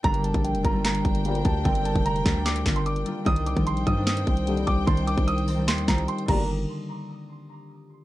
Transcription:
<<
  \new Staff \with { instrumentName = "Grand piano" } { \time 4/4 \key g \minor \tempo 4 = 149 bes''8 a''8 g''8 bes''8 bes''4. a''8 | g''8 a''8 bes''4 d'''8. c'''16 d'''4 | ees'''8 d'''8 c'''8 ees'''8 ees'''4. d'''8 | c'''8 d'''8 ees'''4 c'''8 bes''8 c'''8 bes''8 |
r1 | }
  \new Staff \with { instrumentName = "String section" } { \time 4/4 \key g \minor <d' bes' g''>1~ | <d' bes' g''>1 | <c' c'' g''>1~ | <c' c'' g''>2.~ <c' c'' g''>8 <g d' bes'>8 |
r1 | }
  \new Staff \with { instrumentName = "Harp" } { \clef bass \time 4/4 \key g \minor <d g bes d'>8 r16 <d g bes d'>8 r16 <d g bes f'>16 <d g bes f'>4. r8. | <d g bes c'>4 r8 <d g bes d'>16 <d g bes d'>8 r16 <d g bes f'>8. r16 <d g bes f'>16 r16 | <ees g c' d'>8 r16 <ees g c' f'>8 r16 <ees g c' f'>16 <ees g c' d'>4. r8. | <ees g c' d'>4 r8 <ees g c' ees'>16 <ees g c' d'>8 r16 <ees g c' f'>8. r16 <d g bes d'>8 |
r1 | }
  \new Staff \with { instrumentName = "Brass ensemble" } { \clef bass \time 4/4 \key g \minor r2. <d, bes, g>4 | r1 | r2. <ees, d g>4 | r2. r8 <d, bes, g>8 |
r1 | }
  \new Staff \with { instrumentName = "808-style bass" } { \clef bass \time 4/4 \key g \minor g,,8. bes,,8 f,,16 g,,4 g,,4 d,8 | g,,8. f,,8. d,4 g,,4 r8 | c,8. bes,,8. g,4 c,4 c,8 | c,8. c,4~ c,16 ees,8 c,8 r8 g,,8~ |
g,,8 r2. r8 | }
  \new DrumStaff \with { instrumentName = "Drums" } \drummode { \time 4/4 <hh bd>16 hh16 hh16 <hh bd>16 hh16 hh16 <hh bd>8 <hc hh sn>16 hh16 <hh bd>16 hh16 hh16 hh16 <hh bd>8 | <hh bd>16 hh16 hh16 <hh bd>16 hh16 hh16 <hc hh bd sn>8 <hc hh sn>16 hh16 <hc hh bd sn>16 hh16 hh16 hh16 hh8 | <hh bd>16 hh16 hh16 <hh bd>16 hh16 hh16 <hh bd>8 <hc hh sn>16 hh16 <hh bd>16 hh16 hh16 hh16 <hh bd>8 | <hh bd>16 hh16 hh16 <hh bd>16 hh16 hh16 hho8 <hc hh sn>16 hh16 <hc hh bd sn>16 hh16 hh16 hh16 <cymc bd>8 |
r4 r4 r4 r4 | }
>>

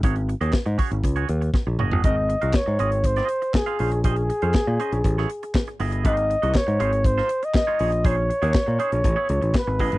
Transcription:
<<
  \new Staff \with { instrumentName = "Flugelhorn" } { \time 4/4 \key aes \mixolydian \tempo 4 = 120 r1 | ees''4 des''4 c''4 aes'4 | aes'2.~ aes'8 r8 | ees''4 des''4 c''8. ees''16 ees''4 |
des''2. b'4 | }
  \new Staff \with { instrumentName = "Clean electric guitar" } { \time 4/4 \key aes \mixolydian <des' ges' aes' des''>16 r8 <des' ges' aes' ees''>16 r8 <des' ges' aes' des''>16 r8 <des' ges' aes' des''>16 r4 <des' ges' aes' ees''>16 <des' ges' aes' ees''>16 | <c' ges' bes' ees''>16 r8 <c' ges' bes' f''>16 r8 <c' f' aes' ees''>16 r8 <c' f' aes' ees''>8 r8 <c' f' aes' f''>16 <des' aes' c'' f''>16 r16 | <des' aes' c'' ees''>16 r8 <des' aes' c'' f''>16 r8 <des' aes' c'' ees''>16 r8 <b e' gis' cis''>16 r4 <b e' gis' ees''>16 <b e' gis' ees''>16 | <bes ees' ges' c''>8 r16 <bes ees' ges' ees''>16 r8 <aes ees' f' c''>16 r8 <aes ees' f' c''>16 r8. <aes ees' f' des''>16 <des' ees' aes' des''>16 r16 |
<des' ees' aes' c''>16 r8 <des' ees' aes' des''>16 r8 <des' ees' aes' c''>16 r8 <b e' gis' cis''>16 r4 <b e' gis' ees''>16 <b e' gis' ees''>16 | }
  \new Staff \with { instrumentName = "Picked electric bass" } { \clef bass \time 4/4 \key aes \mixolydian aes,,8. ees,16 r16 aes,16 r16 aes,,16 des,8 ees,8 r16 bes,,16 ges,,16 g,,16 | aes,,8. c,16 r16 aes,16 aes,,4 r4 bes,,8~ | bes,,8. f,16 r16 bes,16 r16 bes,,16 a,,8 r4 g,,8 | aes,,8. c,16 r16 aes,16 aes,,4 r4 bes,,8~ |
bes,,8. ees,16 r16 bes,16 r16 bes,,16 a,,16 r16 cis,16 a,,16 r16 gis,,16 a,,16 g,,16 | }
  \new DrumStaff \with { instrumentName = "Drums" } \drummode { \time 4/4 <hh bd>16 hh16 hh16 hh16 <hc bd sn>16 hh16 <hho bd>16 hh16 <hh bd>16 hh16 hh16 hh16 <bd sn>8 toml16 tomfh16 | <hh bd>8 hh16 hh16 <hc bd sn>8 hh16 hh16 <hh bd>16 <hh sn>16 hh16 hh16 <hc bd sn>16 hh16 hho16 hh16 | <hh bd>16 hh16 hh16 hh16 <hc bd sn>8 hh16 hh16 <hh bd>16 sn16 hh16 hh16 <hc bd sn>16 hh16 hho16 hh16 | <hh bd>16 hh16 hh16 hh16 <hc bd sn>16 hh16 hh16 hh16 <hh bd>16 sn16 hh16 hh16 <hc bd sn>8 hho16 hh16 |
<hh bd>8 hh16 hh16 <hc bd sn>8 hh16 hh16 <hh bd>8 hh16 hh16 <hc bd sn>8 <hho bd>16 hh16 | }
>>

